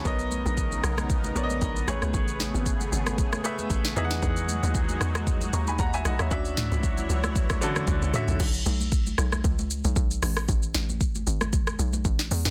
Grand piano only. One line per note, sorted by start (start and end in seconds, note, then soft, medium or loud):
0.00 0.19 A5 medium
0.00 0.19 C#6 medium
0.05 0.89 B3 medium
0.05 0.89 A#4 medium
0.05 0.90 C#5 medium
0.05 0.90 D#5 loud
1.35 1.78 B3 medium
1.35 1.78 A#4 medium
1.35 1.79 C#5 medium
1.35 1.43 D5 medium
1.43 1.82 D#5 loud
1.88 2.72 A3 medium
1.88 2.72 G#4 medium
1.88 2.72 B4 medium
1.88 2.73 C#5 loud
3.44 3.87 A3 medium
3.44 3.87 G#4 medium
3.44 3.88 B4 medium
3.44 3.88 E5 medium
3.96 4.80 E3 medium
3.96 4.81 D#4 medium
3.96 4.81 G#4 medium
3.96 4.04 E5 medium
4.04 4.84 F#5 loud
5.54 5.67 A#5 medium
5.54 5.67 C#6 medium
5.68 5.79 G#5 medium
5.68 5.79 B5 medium
5.80 5.93 F#5 medium
5.80 5.93 A#5 medium
5.94 6.05 E5 medium
5.94 6.05 G#5 medium
6.06 6.19 D#5 medium
6.06 6.19 F#5 medium
6.20 6.45 C#5 medium
6.20 6.31 E5 medium
6.31 7.15 C#4 medium
6.31 7.15 D4 medium
6.31 7.16 F#4 medium
6.31 7.16 E5 loud
7.61 8.04 D3 medium
7.61 8.05 C#4 medium
7.61 8.05 F#4 medium
7.61 8.05 A4 loud
8.13 8.35 D3 medium
8.13 8.35 C#4 medium
8.13 8.36 F#4 medium
8.13 8.36 E5 medium